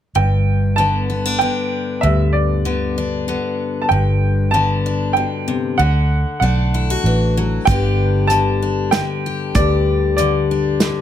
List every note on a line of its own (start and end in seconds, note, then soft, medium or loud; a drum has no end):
0.15 1.49 G1 medium
0.15 2.03 G2 medium
0.15 0.80 G5 medium
0.76 1.40 D3 medium
0.76 1.10 B3 medium
0.76 1.42 A5 medium
1.10 1.25 B3 medium
1.25 2.04 D4 soft
1.39 2.64 D3 medium
1.39 2.66 B3 soft
1.39 2.04 G5 medium
2.01 3.37 D2 medium
2.01 3.87 G2 medium
2.01 2.31 E5 medium
2.33 2.92 D5 medium
2.65 3.27 D3 medium
2.65 3.28 B3 soft
2.98 4.85 D4 medium
3.28 4.53 D3 medium
3.28 3.88 B3 medium
3.82 3.90 A5 medium
3.89 5.25 G1 medium
3.89 5.76 G2 medium
3.89 4.55 G5 medium
4.51 5.78 D3 medium
4.51 5.76 B3 medium
4.51 5.11 A5 medium
4.86 6.43 D4 medium
5.13 5.47 B2 medium
5.13 5.79 G5 medium
5.48 5.79 C3 medium
5.78 6.24 D2 medium
5.78 7.05 D3 medium
5.78 6.38 F#5 medium
6.40 6.95 B1 medium
6.40 7.64 A3 medium
6.40 7.64 D4 medium
6.40 7.31 F#5 medium
6.74 6.90 E4 medium
6.90 7.68 F#4 medium
7.04 7.57 A1 medium
7.04 7.37 E3 medium
7.37 7.68 F#3 medium
7.65 9.01 G1 medium
7.65 9.56 G2 medium
7.65 8.30 D3 medium
7.65 8.31 G5 medium
7.65 kick loud
7.65 closed hi-hat medium
7.70 11.01 B3 medium
7.70 8.62 D4 medium
7.70 9.26 G4 medium
8.27 8.92 D3 medium
8.27 8.93 A5 medium
8.27 closed hi-hat medium
8.62 10.51 D4 medium
8.91 10.18 D3 medium
8.91 9.57 G5 medium
8.91 snare medium
8.91 closed hi-hat medium
9.26 9.56 G4 medium
9.55 10.89 D2 medium
9.55 11.01 G2 medium
9.55 11.01 G4 medium
9.55 10.15 D5 medium
9.55 kick loud
9.55 closed hi-hat medium
10.17 10.81 D3 medium
10.17 11.01 D5 medium
10.17 closed hi-hat medium
10.51 11.01 D4 medium
10.80 11.01 D3 medium
10.80 snare medium
10.80 closed hi-hat medium